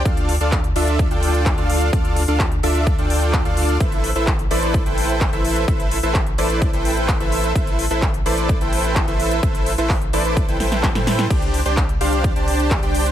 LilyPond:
<<
  \new Staff \with { instrumentName = "Supersaw synth" } { \time 4/4 \key a \minor \tempo 4 = 128 <d' f' a' f''>8. <d' f' a' d'' f''>8 r16 <d' f' a' d'' e''>8. <d' f' a' d'' g''>4 <d' f' a' d'' f''>8. | <d' f' a'>8. <d' f' a' d'' f''>8 r16 <d' f' a' d'' e''>8. <d' f' a' d'' g''>4 <d' f' a' d'' f''>8. | <e' a' b' e''>8. <e' a' b' c'' e''>8 r16 <e' a' b' c'' d''>8. <e' a' b' c'' g''>4 <e' a' b' c'' e''>8. | <e' a' c'' e''>8. <e' a' b' c'' e''>8 r16 <e' a' b' c'' d''>8. <e' a' b' c'' g''>4 <e' a' b' c'' e''>8. |
<e' e''>8. <e' a' b' c'' e''>8 r16 <e' a' b' c'' d''>8. <e' a' b' c'' g''>4 <e' a' b' c'' e''>8. | <e' a' b' c'' e''>8. <e' a' b' c'' e''>8 r16 <e' a' b' c'' d''>8. <e' a' b' c'' g''>16 <e' a' b' c'' g''>8. <e' a' b' c'' g''>8. | <d' g' c'' g''>8. <d' g' c'' d'' g''>8 r16 <d' g' c'' d'' f''>8. <d' g' c'' d'' a''>4 <d' g' c'' d'' g''>8. | }
  \new Staff \with { instrumentName = "Sub bass" } { \clef bass \time 4/4 \key a \minor d,8. d,8. d,8. d,4 d,8. | d,8. d,8. d,8. d,4 d,8. | a,,8. a,,8. a,,8. a,,4 a,,8. | a,,8. a,,8. a,,8. a,,4 a,,8. |
a,,8. a,,8. a,,8. a,,4 a,,8. | a,,8. a,,8. a,,8. a,,16 a,,8. a,8. | c,8. c,8. c,8. c,4 c,8. | }
  \new DrumStaff \with { instrumentName = "Drums" } \drummode { \time 4/4 <hh bd>16 hh16 hho16 hh16 <hc hh bd>16 hh16 hho16 hh16 <hh bd>16 hh16 hho16 hh16 <hc hh bd>16 hh16 hho16 hh16 | <hh bd>16 hh16 hho16 hh16 <hc hh bd>16 hh16 hho16 hh16 <hh bd>16 hh16 hho16 hh16 <hc hh bd>16 hh16 hho16 hh16 | <hh bd>16 hh16 hho16 hh16 <hc hh bd>16 hh16 hho16 hh16 <hh bd>16 hh16 hho16 hh16 <hc hh bd>16 hh16 hho16 hh16 | <hh bd>16 hh16 hho16 hh16 <hc hh bd>16 hh16 hho16 hh16 <hh bd>16 hh16 hho16 hh16 <hc hh bd>16 hh16 hho16 hh16 |
<hh bd>16 hh16 hho16 hh16 <hc hh bd>16 hh16 hho16 hh16 <hh bd>16 hh16 hho16 hh16 <hc hh bd>16 hh16 hho16 hh16 | <hh bd>16 hh16 hho16 hh16 <hc hho bd>16 hh16 hho16 hh16 <hh bd>16 hh16 <hho sn>16 <hh sn>16 <hc hh bd sn>16 <hh sn>16 <hho sn>16 <hh sn>16 | <cymc hh bd>16 hh16 hho16 hh16 <hc hh bd>16 hh16 hho16 hh16 <hh bd>16 hh16 hho16 hh16 <hc hh bd>16 hh16 hho16 hh16 | }
>>